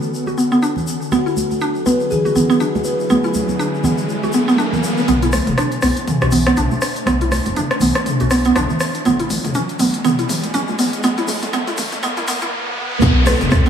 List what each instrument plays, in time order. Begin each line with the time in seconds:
Already playing: ambient pad D3 B3 C#4 A4
0.02 shaker
0.14 shaker
0.26 synth arpeggio sound F#4, muted conga, shaker
0.38 synth arpeggio sound B3, shaker
0.52 synth arpeggio sound B3, shaker
0.63 synth arpeggio sound D4, shaker
0.76 muted conga, low conga, shaker
0.87 shaker
1.02 shaker
1.11 ambient pad D3 F#3 E4 G#4, synth arpeggio sound B3, kalimba F#4, riser, muted conga, high conga, shaker
1.26 synth arpeggio sound E4, shaker
1.37 high conga, shaker
1.51 muted conga, high conga, shaker
1.61 synth arpeggio sound D4, shaker
1.75 shaker
1.86 synth arpeggio sound B3, kalimba B4, muted conga, high conga, shaker
2.00 shaker
2.11 kalimba G#4, low conga, shaker
2.25 synth arpeggio sound F#4, muted conga, shaker
2.36 synth arpeggio sound B3, low conga, shaker
2.50 synth arpeggio sound B3, shaker
2.60 synth arpeggio sound D4, kalimba F#4, shaker
2.75 muted conga, high conga, shaker
2.84 kalimba B4, shaker
3.00 shaker
3.10 synth arpeggio sound B3, muted conga, high conga, shaker
3.24 synth arpeggio sound E4, shaker
3.34 high conga, shaker
3.49 muted conga, high conga, shaker
3.59 synth arpeggio sound D4, shaker
3.74 shaker
3.84 synth arpeggio sound B3, muted conga, high conga, low conga, shaker
3.98 shaker
4.09 shaker
4.23 synth arpeggio sound F#4, muted conga, shaker
4.32 synth arpeggio sound B3, shaker
4.48 synth arpeggio sound B3, shaker
4.58 synth arpeggio sound D4, shaker
4.73 muted conga, low conga, shaker
4.84 shaker
4.97 shaker
5.08 detuned saw bass B1, ambient pad A3 C#4 D4, synth arpeggio sound B3, closed hi-hat, mid tom, riser, muted conga, high conga, shaker
5.22 synth arpeggio sound E4, closed hi-hat, shaker
5.32 cross-stick, open hi-hat, high conga, shaker
5.47 detuned saw bass F#1, closed hi-hat, mid tom, muted conga, high conga, shaker
5.58 synth arpeggio sound D4, cross-stick, closed hi-hat, mid tom, shaker
5.71 closed hi-hat, shaker
5.82 detuned saw bass B1, synth arpeggio sound B3, cross-stick, open hi-hat, muted conga, high conga, shaker
5.97 closed hi-hat, shaker
6.08 closed hi-hat, mid tom, low conga, shaker
6.21 detuned saw bass B1, synth arpeggio sound F#4, cross-stick, closed hi-hat, muted conga, shaker
6.31 synth arpeggio sound B3, open hi-hat, low conga, shaker
6.47 synth arpeggio sound B3, cross-stick, closed hi-hat, high conga, shaker
6.57 detuned saw bass B1, synth arpeggio sound D4, closed hi-hat, mid tom, shaker
6.71 muted conga, high conga, shaker
6.82 cross-stick, open hi-hat, shaker
6.96 closed hi-hat, shaker
7.06 detuned saw bass B1, synth arpeggio sound B3, cross-stick, closed hi-hat, mid tom, muted conga, high conga, shaker
7.21 synth arpeggio sound E4, closed hi-hat, shaker
7.31 cross-stick, open hi-hat, high conga, shaker
7.46 detuned saw bass F#1, closed hi-hat, muted conga, high conga, shaker
7.56 synth arpeggio sound D4, closed hi-hat, mid tom, shaker
7.71 cross-stick, closed hi-hat, shaker
7.80 detuned saw bass B1, synth arpeggio sound B3, open hi-hat, muted conga, high conga, low conga, shaker
7.95 cross-stick, closed hi-hat, shaker
8.06 closed hi-hat, mid tom, shaker
8.20 detuned saw bass B1, synth arpeggio sound F#4, closed hi-hat, muted conga, shaker
8.31 synth arpeggio sound B3, cross-stick, open hi-hat, shaker
8.45 synth arpeggio sound B3, closed hi-hat, shaker
8.56 detuned saw bass B1, synth arpeggio sound D4, cross-stick, closed hi-hat, mid tom, shaker
8.70 muted conga, low conga, shaker
8.80 cross-stick, open hi-hat, shaker
8.95 closed hi-hat, shaker
9.05 detuned saw bass A1, ambient pad A2 G#3 C#4, synth arpeggio sound B3, closed hi-hat, mid tom, muted conga, high conga, shaker
9.20 synth arpeggio sound E4, closed hi-hat, shaker
9.30 open hi-hat, mid tom, high conga, shaker
9.44 detuned saw bass E1, closed hi-hat, mid tom, muted conga, high conga, shaker
9.54 synth arpeggio sound C#4, closed hi-hat, mid tom, shaker
9.69 closed hi-hat, shaker
9.79 detuned saw bass A1, synth arpeggio sound B3, open hi-hat, mid tom, muted conga, high conga, shaker
9.94 closed hi-hat, shaker
10.04 synth arpeggio sound B3, closed hi-hat, mid tom, low conga, shaker
10.19 detuned saw bass A1, synth arpeggio sound E4, closed hi-hat, muted conga, shaker
10.29 open hi-hat, mid tom, low conga, shaker
10.43 closed hi-hat, high conga, shaker
10.54 detuned saw bass A1, synth arpeggio sound C#4, closed hi-hat, mid tom, shaker
10.68 muted conga, high conga, shaker
10.79 synth arpeggio sound B3, open hi-hat, mid tom, shaker
10.93 closed hi-hat, shaker
11.03 detuned saw bass A1, synth arpeggio sound B3, closed hi-hat, mid tom, muted conga, high conga, shaker
11.17 synth arpeggio sound E4, closed hi-hat, mid tom, shaker
11.28 open hi-hat, mid tom, high conga, shaker
11.42 detuned saw bass E1, closed hi-hat, mid tom, muted conga, high conga, shaker
11.53 synth arpeggio sound B3, closed hi-hat, mid tom, shaker
11.67 synth arpeggio sound E4, closed hi-hat, mid tom, shaker
11.77 detuned saw bass A1, open hi-hat, mid tom, muted conga, high conga, low conga, shaker
11.92 closed hi-hat, mid tom, shaker
12.03 synth arpeggio sound B3, closed hi-hat, mid tom, shaker
12.17 detuned saw bass A1, synth arpeggio sound E4, closed hi-hat, mid tom, muted conga, shaker
12.28 synth arpeggio sound B3, open hi-hat, mid tom, shaker
12.41 synth arpeggio sound E4, closed hi-hat, mid tom, shaker
12.67 high tom
12.77 mid tom
12.92 mid tom
13.01 detuned saw bass B1, ambient pad D3 A3 D4, synth arpeggio sound B3, kick, closed hi-hat, downlifter, muted conga, high conga, shaker
13.26 kalimba A4, synth arpeggio sound B4, cross-stick, open hi-hat, high conga, shaker
13.41 detuned saw bass F#1, closed hi-hat, mid tom, muted conga, high conga, shaker
13.51 kick, cross-stick, closed hi-hat, shaker
13.66 synth arpeggio sound B3, closed hi-hat